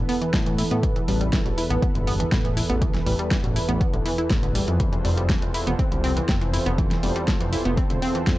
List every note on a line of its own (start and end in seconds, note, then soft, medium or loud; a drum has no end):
0.00 8.38 E2 medium
0.00 4.76 E3 medium
0.00 4.76 B3 medium
0.00 4.76 A4 medium
0.00 4.76 B4 loud
0.09 0.21 B3 loud
0.09 open hi-hat loud
0.22 0.30 E3 medium
0.22 closed hi-hat soft
0.34 0.64 A2 loud
0.34 0.46 B3 medium
0.34 kick loud
0.34 snare loud
0.34 closed hi-hat medium
0.46 0.51 E3 medium
0.46 closed hi-hat soft
0.58 0.64 E4 medium
0.58 open hi-hat loud
0.71 1.01 A2 medium
0.71 0.76 B3 loud
0.71 closed hi-hat soft
0.83 0.92 E3 medium
0.83 kick loud
0.83 closed hi-hat medium
0.96 1.01 E3 medium
0.96 closed hi-hat soft
1.08 1.38 A1 loud
1.08 1.19 G3 medium
1.08 open hi-hat loud
1.21 1.29 G3 medium
1.21 closed hi-hat soft
1.33 1.38 E3 medium
1.33 kick loud
1.33 snare loud
1.33 closed hi-hat medium
1.45 1.53 A1 medium
1.45 1.54 B2 medium
1.45 closed hi-hat soft
1.58 1.63 E4 medium
1.58 open hi-hat loud
1.70 1.78 A1 medium
1.70 1.75 B3 loud
1.70 closed hi-hat soft
1.82 1.91 B3 medium
1.82 kick loud
1.82 closed hi-hat medium
1.95 2.25 G1 medium
1.95 2.04 D3 medium
1.95 closed hi-hat soft
2.07 2.19 B3 loud
2.07 open hi-hat loud
2.20 2.28 E3 medium
2.20 closed hi-hat soft
2.32 2.62 A1 medium
2.32 2.44 B3 medium
2.32 kick loud
2.32 snare loud
2.32 closed hi-hat medium
2.45 2.50 E3 medium
2.45 closed hi-hat soft
2.57 2.62 E4 medium
2.57 open hi-hat loud
2.69 2.99 A1 loud
2.69 2.75 B3 loud
2.69 closed hi-hat soft
2.82 2.91 E3 medium
2.82 kick loud
2.82 closed hi-hat medium
2.94 2.99 E3 medium
2.94 snare soft
2.94 closed hi-hat soft
3.06 3.14 A1 medium
3.06 3.18 G3 medium
3.06 open hi-hat loud
3.19 3.28 G3 medium
3.19 closed hi-hat soft
3.31 3.37 E3 medium
3.31 kick loud
3.31 snare loud
3.31 closed hi-hat medium
3.44 3.59 A1 medium
3.44 3.52 B2 medium
3.44 closed hi-hat soft
3.56 3.61 E4 medium
3.56 open hi-hat loud
3.69 3.84 A1 medium
3.69 3.74 B3 loud
3.69 closed hi-hat soft
3.81 3.90 B3 medium
3.81 kick loud
3.81 closed hi-hat medium
3.93 4.01 A1 medium
3.93 4.02 D3 medium
3.93 closed hi-hat soft
4.06 4.18 E3 loud
4.06 open hi-hat loud
4.18 4.30 E4 medium
4.18 closed hi-hat soft
4.30 4.60 A1 loud
4.30 4.39 D3 medium
4.30 kick loud
4.30 snare loud
4.30 closed hi-hat medium
4.43 4.52 D3 medium
4.43 closed hi-hat soft
4.55 4.64 G3 medium
4.55 open hi-hat loud
4.68 4.98 F2 loud
4.68 4.73 E3 medium
4.68 closed hi-hat soft
4.80 4.89 E3 medium
4.80 8.38 C4 medium
4.80 8.38 F4 medium
4.80 8.38 A4 medium
4.80 8.38 C5 medium
4.80 kick loud
4.80 closed hi-hat medium
4.93 4.98 E3 medium
4.93 closed hi-hat soft
5.05 5.35 F1 loud
5.05 5.16 G3 medium
5.05 open hi-hat loud
5.17 5.26 G3 medium
5.17 closed hi-hat soft
5.29 5.35 F3 medium
5.29 kick loud
5.29 snare loud
5.29 closed hi-hat medium
5.42 5.50 F1 medium
5.42 5.51 E3 medium
5.42 closed hi-hat soft
5.54 5.60 E4 medium
5.54 open hi-hat loud
5.67 5.75 F1 medium
5.67 5.72 B3 loud
5.67 closed hi-hat soft
5.79 5.88 C4 medium
5.79 kick loud
5.79 closed hi-hat medium
5.92 6.22 C2 medium
5.92 6.00 D3 medium
5.92 closed hi-hat soft
6.04 6.16 C4 loud
6.04 open hi-hat loud
6.17 6.25 E3 medium
6.17 closed hi-hat soft
6.29 6.59 F1 medium
6.29 6.41 C4 medium
6.29 kick loud
6.29 snare loud
6.29 closed hi-hat medium
6.41 6.46 E3 medium
6.41 closed hi-hat soft
6.53 6.59 E4 medium
6.53 open hi-hat loud
6.66 6.96 F1 loud
6.66 6.71 B3 loud
6.66 closed hi-hat soft
6.78 6.87 E3 medium
6.78 kick loud
6.78 closed hi-hat medium
6.91 6.96 E3 medium
6.91 snare soft
6.91 closed hi-hat soft
7.03 7.11 F1 medium
7.03 7.14 G3 medium
7.03 open hi-hat loud
7.16 7.24 G3 medium
7.16 closed hi-hat soft
7.28 7.33 F3 medium
7.28 kick loud
7.28 snare loud
7.28 closed hi-hat medium
7.41 7.56 F1 loud
7.41 7.49 E3 medium
7.41 closed hi-hat soft
7.53 7.58 E4 medium
7.53 open hi-hat loud
7.65 7.81 F1 medium
7.65 7.70 B3 loud
7.65 closed hi-hat soft
7.77 7.86 C4 medium
7.77 kick loud
7.77 closed hi-hat medium
7.90 7.98 F1 medium
7.90 7.99 D3 medium
7.90 closed hi-hat soft
8.02 8.14 C4 loud
8.02 open hi-hat loud
8.15 8.23 E3 medium
8.15 closed hi-hat soft
8.27 8.38 F2 loud
8.27 8.38 C4 medium
8.27 kick loud
8.27 snare loud
8.27 closed hi-hat medium